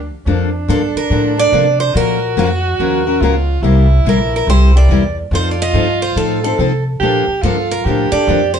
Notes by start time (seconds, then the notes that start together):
Already playing: D4
0.26 F2 D3 F3 A#3 D4 A4
0.68 G2 D3 F3 A#3 D4 A4
0.95 A#4, muted upright bass stroke
1.10 A2 D3 F3 A#3 D4 A4
1.37 A#3 D4 A4 D5
1.52 C3 D3 F3 A#3 D4 A4
1.80 C5
1.94 A#2 F3 A#3 C#4 F#4 A#4
2.37 F2 F3 A#3 C#4 F#4 A#4
2.79 D#2 F3 A#3 C#4 F#4 A#4
3.07 C#4 F#4 A#4
3.20 C#2 F3 A#3 C#4 F4 F#4 A#4
3.62 C2 C3 G3 A#3 E4 G4
4.05 A#1 C3 G3 A#3 E4 G4 A#4
4.36 A#4
4.47 C2 C3 G3 A#3 E4 G4 C5
4.76 A#3 E4 G4 D5
4.89 E2 C3 G3 A#3 E4 G4
5.31 F2 F3 C4 D#4 F4 A4 C5
5.51 D5
5.62 D#5
5.73 G2 F3 C4 D#4 A4
6.02 C5
6.16 A2 F3 C4 D#4 A4
6.44 C4 D#4 A4
6.58 C3 F3 C4 D#4 A4
7.00 A#2 D3 F3 A#3 D4 G4 A4
7.28 muted upright bass stroke
7.42 G2 D3 F3 A#3 D4 F4 A4
7.71 A#4
7.85 A2 D3 F3 A#3 D4 G4 A4
8.12 A#3 D4 A4 D5, muted upright bass stroke
8.27 F2 D3 F3 A#3 D4 A4
8.54 C5